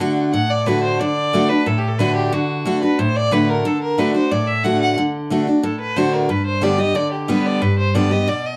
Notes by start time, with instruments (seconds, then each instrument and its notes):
0.00 steel-string acoustic guitar D3 A3 D4 F#4
0.33 steel-string acoustic guitar A2, fiddle F#5
0.50 fiddle D5
0.66 steel-string acoustic guitar D3 A3 D4 F#4, fiddle B4
0.83 fiddle C5
0.99 steel-string acoustic guitar D3, fiddle D5
1.33 steel-string acoustic guitar D3 A3 D4 F#4
1.49 steel-string acoustic guitar D4 F#4, fiddle B4
1.66 steel-string acoustic guitar A2, fiddle A4
1.78 fiddle G4
1.88 fiddle A4
1.99 steel-string acoustic guitar D3 A3 D4 F#4, fiddle B4
2.15 fiddle G4
2.32 steel-string acoustic guitar D3, fiddle F#4
2.65 steel-string acoustic guitar D3 A3 D4 F#4
2.82 steel-string acoustic guitar D4 F#4, fiddle B4
2.98 steel-string acoustic guitar A2, fiddle C5
3.16 fiddle D5
3.31 steel-string acoustic guitar D3 A3 D4 F#4, fiddle B4
3.49 fiddle A#4
3.65 steel-string acoustic guitar D3, fiddle A4
3.82 fiddle A#4
3.98 steel-string acoustic guitar D3 A3 D4 F#4, fiddle B4
4.14 steel-string acoustic guitar D4 F#4, fiddle C5
4.31 steel-string acoustic guitar A2, fiddle D5
4.47 fiddle E5
4.64 steel-string acoustic guitar D3 A3 D4 F#4, fiddle F#5
4.81 fiddle F#5
4.98 steel-string acoustic guitar D3
5.30 steel-string acoustic guitar D3 A3 D4 F#4
5.47 steel-string acoustic guitar D4 F#4
5.63 steel-string acoustic guitar A2, fiddle A4
5.80 fiddle B4
5.96 steel-string acoustic guitar D3 A3 D4 F#4, fiddle C5
6.13 fiddle A#4
6.29 steel-string acoustic guitar G2, fiddle B4
6.46 fiddle C5
6.61 steel-string acoustic guitar D3 G3 B3 G4, fiddle D5
6.78 steel-string acoustic guitar B3 G4, fiddle D#5
6.95 steel-string acoustic guitar D3, fiddle D5
7.12 fiddle G4
7.28 steel-string acoustic guitar D3 G3 B3 G4, fiddle B4
7.46 fiddle D5
7.62 steel-string acoustic guitar G2, fiddle B4
7.78 fiddle C5
7.95 steel-string acoustic guitar D3 G3 B3 G4, fiddle D5
8.11 steel-string acoustic guitar B3 G4, fiddle D#5
8.28 steel-string acoustic guitar B2, fiddle D5
8.46 fiddle D#5